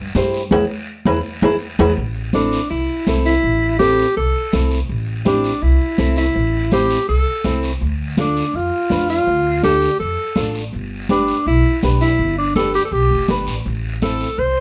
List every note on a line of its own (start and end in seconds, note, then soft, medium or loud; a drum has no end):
0.15 0.44 G2 loud
0.15 0.41 E4 medium
0.15 0.41 G4 medium
0.15 0.41 C5 medium
0.15 high conga medium
0.15 low timbale medium
0.15 short guiro medium
0.34 short guiro medium
0.51 0.65 E2 medium
0.51 0.63 E4 medium
0.51 0.63 G#4 loud
0.51 0.63 B4 medium
0.51 high conga medium
0.51 high timbale medium
0.51 long guiro medium
1.05 1.20 E2 medium
1.05 1.18 E4 medium
1.05 1.18 G#4 medium
1.05 1.18 B4 medium
1.05 high conga medium
1.05 high timbale loud
1.05 long guiro medium
1.42 1.56 E2 medium
1.42 1.55 E4 loud
1.42 1.55 G#4 medium
1.42 1.55 B4 loud
1.42 high conga medium
1.42 high timbale medium
1.42 long guiro medium
1.79 1.93 E2 medium
1.79 1.91 E4 medium
1.79 1.91 G#4 medium
1.79 1.91 B4 medium
1.79 high conga medium
1.79 high timbale medium
1.79 long guiro loud
1.97 2.56 A1 medium
1.97 high conga soft
1.97 long guiro medium
2.33 2.59 C4 medium
2.33 2.68 D4 medium
2.33 2.60 E4 medium
2.33 2.60 A4 medium
2.33 high conga medium
2.33 short guiro medium
2.52 short guiro medium
2.70 2.85 C2 medium
2.70 3.21 E4 medium
2.70 high conga soft
2.70 long guiro medium
3.07 3.36 C2 medium
3.07 3.33 C4 medium
3.07 3.33 E4 medium
3.07 3.33 A4 medium
3.07 high conga medium
3.07 short guiro medium
3.25 3.77 E4 medium
3.25 short guiro medium
3.43 4.02 A1 medium
3.43 high conga soft
3.43 long guiro medium
3.79 4.05 C4 medium
3.79 4.06 E4 medium
3.79 4.14 G4 loud
3.79 4.06 A4 medium
3.79 high conga medium
3.79 short guiro medium
3.99 short guiro medium
4.17 4.31 C2 medium
4.17 4.68 A4 medium
4.17 high conga soft
4.17 long guiro medium
4.53 4.82 C2 medium
4.53 4.78 C4 medium
4.53 4.79 E4 medium
4.53 4.79 A4 medium
4.53 high conga medium
4.53 short guiro medium
4.71 short guiro medium
4.89 5.48 A1 medium
4.89 high conga soft
4.89 long guiro medium
5.25 5.51 C4 medium
5.25 5.64 D4 medium
5.25 5.51 E4 medium
5.25 5.51 G4 medium
5.25 high conga medium
5.25 short guiro medium
5.44 short guiro medium
5.62 5.77 C2 medium
5.62 6.17 E4 medium
5.62 high conga soft
5.62 long guiro medium
5.98 6.28 C2 medium
5.98 6.24 C4 medium
5.98 6.24 E4 medium
5.98 6.25 A4 medium
5.98 high conga medium
5.98 short guiro medium
6.16 6.68 E4 medium
6.16 short guiro medium
6.35 6.94 A1 loud
6.35 high conga soft
6.35 long guiro medium
6.71 6.98 C4 medium
6.71 6.98 E4 medium
6.71 7.07 G4 medium
6.71 6.98 C5 medium
6.71 high conga medium
6.71 short guiro medium
6.90 short guiro medium
7.08 7.23 C2 medium
7.08 7.60 A4 medium
7.08 high conga soft
7.08 long guiro medium
7.44 7.74 C2 medium
7.44 7.70 C4 medium
7.44 7.71 E4 medium
7.44 7.71 A4 medium
7.44 high conga medium
7.44 short guiro medium
7.63 short guiro medium
7.81 8.40 D2 medium
7.81 high conga soft
7.81 long guiro medium
8.17 8.43 D4 medium
8.17 8.58 D4 medium
8.17 8.44 F4 medium
8.17 8.44 A4 medium
8.17 high conga medium
8.17 short guiro medium
8.37 short guiro medium
8.54 8.69 F2 medium
8.54 9.09 F4 medium
8.54 high conga soft
8.54 long guiro medium
8.90 9.20 F2 medium
8.90 9.16 D4 medium
8.90 9.16 F4 medium
8.90 9.17 B4 medium
8.90 high conga medium
8.90 short guiro medium
9.09 9.61 F4 medium
9.09 short guiro medium
9.27 9.86 D2 medium
9.27 high conga soft
9.27 long guiro medium
9.63 9.89 D4 medium
9.63 9.89 F4 medium
9.63 9.98 G4 medium
9.63 9.89 A4 medium
9.63 high conga medium
9.63 short guiro medium
9.82 short guiro medium
10.00 10.15 F2 medium
10.00 10.51 A4 medium
10.00 high conga soft
10.00 long guiro medium
10.36 10.66 A1 medium
10.36 10.62 D4 medium
10.36 10.62 F4 medium
10.36 10.62 A4 medium
10.36 high conga medium
10.36 short guiro medium
10.55 short guiro medium
10.73 11.32 G1 medium
10.73 high conga soft
10.73 long guiro medium
11.09 11.35 D4 medium
11.09 11.44 D4 medium
11.09 11.35 G4 medium
11.09 11.36 B4 medium
11.09 high conga medium
11.09 short guiro medium
11.28 short guiro medium
11.46 11.61 B1 medium
11.46 11.81 E4 medium
11.46 high conga soft
11.46 long guiro medium
11.83 12.12 B1 medium
11.83 12.08 D4 medium
11.83 12.08 G4 medium
11.83 12.09 B4 medium
11.83 high conga medium
11.83 short guiro medium
12.01 12.35 E4 medium
12.01 short guiro medium
12.19 12.77 G1 medium
12.19 high conga soft
12.19 long guiro medium
12.38 12.55 D4 medium
12.56 12.81 D4 medium
12.56 12.82 G4 medium
12.56 12.73 A4 medium
12.56 12.82 B4 medium
12.56 high conga medium
12.56 short guiro medium
12.74 12.85 G4 medium
12.74 short guiro medium
12.85 12.94 A4 medium
12.92 13.06 B1 medium
12.92 13.29 G4 medium
12.92 high conga soft
12.92 long guiro medium
13.11 13.27 F1 medium
13.28 13.45 G1 medium
13.28 13.54 D4 medium
13.28 13.54 G4 medium
13.28 13.55 B4 medium
13.28 high conga medium
13.28 short guiro medium
13.47 13.63 A1 medium
13.47 short guiro medium
13.65 14.24 A1 medium
13.65 high conga soft
13.65 long guiro medium
14.02 14.27 C4 medium
14.02 14.27 E4 medium
14.02 14.27 A4 medium
14.02 14.40 A4 medium
14.02 high conga medium
14.02 short guiro medium
14.20 short guiro medium
14.38 14.53 C2 medium
14.38 14.60 C5 medium
14.38 high conga soft
14.38 long guiro medium